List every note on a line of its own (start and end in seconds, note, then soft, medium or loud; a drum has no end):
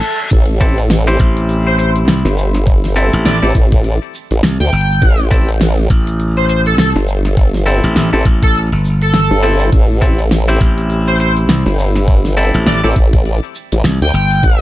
0.00 0.19 A4 loud
0.00 closed hi-hat medium
0.00 reverse cymbal medium
0.00 shaker medium
0.11 closed hi-hat medium
0.19 closed hi-hat medium
0.19 shaker soft
0.25 closed hi-hat soft
0.31 1.18 A1 loud
0.31 kick loud
0.31 closed hi-hat medium
0.31 shaker medium
0.34 closed hi-hat medium
0.46 closed hi-hat medium
0.46 shaker soft
0.61 0.79 C4 medium
0.61 0.79 E4 medium
0.61 0.79 G4 medium
0.61 0.79 A4 medium
0.61 kick loud
0.61 shaker medium
0.78 closed hi-hat medium
0.78 shaker soft
0.90 snare loud
0.90 closed hi-hat medium
0.90 shaker medium
1.07 2.93 C4 medium
1.07 2.93 E4 medium
1.07 2.93 G4 medium
1.07 2.93 C5 loud
1.07 shaker soft
1.20 2.06 A1 medium
1.20 kick loud
1.20 shaker medium
1.37 closed hi-hat medium
1.37 shaker soft
1.49 closed hi-hat medium
1.49 shaker medium
1.66 1.74 C5 medium
1.66 shaker soft
1.78 1.89 C5 medium
1.78 shaker medium
1.96 closed hi-hat medium
1.96 shaker soft
2.08 2.22 C2 loud
2.08 snare loud
2.08 closed hi-hat medium
2.08 shaker medium
2.25 3.11 G1 loud
2.25 snare soft
2.25 shaker soft
2.38 shaker loud
2.54 snare soft
2.54 closed hi-hat medium
2.54 shaker soft
2.67 kick loud
2.67 closed hi-hat medium
2.67 shaker medium
2.84 snare soft
2.84 shaker soft
2.95 3.39 C4 medium
2.95 3.39 E4 medium
2.95 3.39 G4 medium
2.95 3.39 A4 loud
2.95 shaker medium
3.13 3.24 A1 loud
3.13 closed hi-hat medium
3.13 shaker soft
3.25 3.40 A1 loud
3.25 3.44 D5 loud
3.25 snare loud
3.25 closed hi-hat medium
3.25 shaker medium
3.42 3.53 A1 loud
3.42 3.56 C4 medium
3.42 3.56 E4 medium
3.42 3.56 G4 medium
3.42 3.56 A4 medium
3.42 shaker soft
3.55 3.99 A1 loud
3.55 kick loud
3.55 shaker loud
3.72 kick loud
3.72 closed hi-hat medium
3.72 shaker soft
3.84 closed hi-hat medium
3.84 shaker soft
4.01 shaker soft
4.14 shaker medium
4.31 4.41 A1 loud
4.31 closed hi-hat medium
4.31 shaker soft
4.43 4.58 C2 loud
4.43 snare loud
4.43 closed hi-hat medium
4.43 shaker medium
4.60 4.71 D2 loud
4.60 5.19 G5 loud
4.60 shaker soft
4.72 5.00 G1 loud
4.72 shaker medium
4.81 closed hi-hat medium
4.90 shaker soft
5.02 5.88 A1 loud
5.02 kick loud
5.02 closed hi-hat medium
5.02 shaker medium
5.19 shaker soft
5.31 5.49 C4 medium
5.31 5.49 E4 medium
5.31 5.49 G4 medium
5.31 5.49 A4 medium
5.31 kick loud
5.31 shaker loud
5.48 closed hi-hat medium
5.48 shaker soft
5.61 snare loud
5.61 closed hi-hat medium
5.61 shaker medium
5.78 shaker soft
5.90 6.76 A1 loud
5.90 kick loud
5.90 shaker medium
6.07 closed hi-hat medium
6.07 shaker soft
6.20 closed hi-hat medium
6.20 shaker soft
6.37 6.45 C5 medium
6.37 shaker soft
6.49 6.60 C5 medium
6.49 shaker loud
6.66 6.74 A4 medium
6.66 closed hi-hat medium
6.66 shaker soft
6.78 6.93 C2 loud
6.78 6.90 A4 medium
6.78 snare loud
6.78 closed hi-hat medium
6.78 shaker medium
6.95 7.81 G1 loud
6.95 snare soft
6.95 shaker soft
7.08 shaker loud
7.24 snare soft
7.24 closed hi-hat medium
7.24 shaker soft
7.37 kick loud
7.37 closed hi-hat medium
7.37 shaker medium
7.54 snare soft
7.54 shaker soft
7.66 8.09 C4 medium
7.66 8.09 E4 medium
7.66 8.09 G4 medium
7.66 8.09 A4 loud
7.66 shaker medium
7.84 7.94 A1 medium
7.84 closed hi-hat medium
7.84 shaker soft
7.96 8.11 A1 loud
7.96 snare loud
7.96 closed hi-hat medium
7.96 shaker medium
8.13 8.23 A1 loud
8.13 8.27 C4 medium
8.13 8.27 E4 medium
8.13 8.27 G4 medium
8.13 8.27 A4 medium
8.13 shaker soft
8.25 8.69 A1 loud
8.25 kick loud
8.25 shaker medium
8.43 8.57 A4 loud
8.43 kick loud
8.43 closed hi-hat medium
8.43 shaker soft
8.54 closed hi-hat medium
8.54 shaker medium
8.72 9.28 G1 loud
8.72 shaker soft
8.85 shaker medium
9.02 9.61 A4 loud
9.02 closed hi-hat medium
9.02 shaker soft
9.13 snare loud
9.13 closed hi-hat medium
9.13 shaker medium
9.31 9.71 G1 loud
9.31 shaker soft
9.43 9.69 C4 medium
9.43 9.69 E4 medium
9.43 9.69 G4 medium
9.43 9.69 A4 medium
9.43 shaker medium
9.60 closed hi-hat medium
9.60 shaker soft
9.72 10.59 A1 loud
9.72 kick loud
9.72 closed hi-hat medium
9.72 shaker medium
9.90 shaker soft
10.01 10.20 C4 medium
10.01 10.20 E4 medium
10.01 10.20 G4 medium
10.01 10.20 A4 medium
10.01 kick loud
10.01 shaker loud
10.19 closed hi-hat medium
10.19 shaker soft
10.31 snare loud
10.31 closed hi-hat medium
10.31 shaker medium
10.48 12.34 C4 medium
10.48 12.34 E4 medium
10.48 12.34 G4 medium
10.48 12.34 C5 loud
10.48 shaker soft
10.61 11.47 A1 loud
10.61 kick loud
10.61 shaker loud
10.78 closed hi-hat medium
10.78 shaker soft
10.90 closed hi-hat soft
10.90 shaker medium
11.07 11.15 C5 medium
11.07 shaker soft
11.19 11.31 C5 medium
11.19 shaker medium
11.37 closed hi-hat medium
11.37 shaker soft
11.49 11.63 C2 loud
11.49 snare loud
11.49 closed hi-hat medium
11.49 shaker medium
11.66 12.52 G1 loud
11.66 snare soft
11.66 shaker soft
11.79 shaker medium
11.96 snare soft
11.96 closed hi-hat medium
11.96 shaker soft
12.08 kick loud
12.08 closed hi-hat soft
12.08 shaker soft
12.13 closed hi-hat soft
12.17 closed hi-hat soft
12.25 snare soft
12.25 closed hi-hat soft
12.25 shaker soft
12.27 closed hi-hat soft
12.33 12.80 E4 medium
12.33 closed hi-hat soft
12.37 12.80 C4 medium
12.37 12.80 G4 medium
12.37 12.80 A4 loud
12.37 shaker medium
12.54 12.65 A1 loud
12.54 closed hi-hat medium
12.54 shaker soft
12.67 12.81 A1 loud
12.67 12.86 D5 loud
12.67 snare loud
12.67 closed hi-hat medium
12.67 shaker medium
12.84 12.94 A1 medium
12.84 12.97 C4 medium
12.84 12.97 E4 medium
12.84 12.97 G4 medium
12.84 12.97 A4 medium
12.84 shaker soft
12.96 13.40 A1 loud
12.96 kick loud
12.96 shaker medium
13.13 kick loud
13.13 closed hi-hat medium
13.13 shaker soft
13.25 closed hi-hat soft
13.25 shaker soft
13.43 shaker soft
13.55 shaker medium
13.72 13.83 A1 loud
13.72 closed hi-hat medium
13.72 shaker soft
13.84 13.99 C2 loud
13.84 snare loud
13.84 closed hi-hat medium
13.84 shaker medium
14.02 14.12 D2 loud
14.02 14.61 G5 medium
14.02 shaker soft
14.14 14.41 G1 loud
14.14 shaker medium
14.31 closed hi-hat medium
14.31 shaker soft
14.43 14.61 A1 medium
14.43 kick loud
14.43 closed hi-hat medium
14.43 shaker soft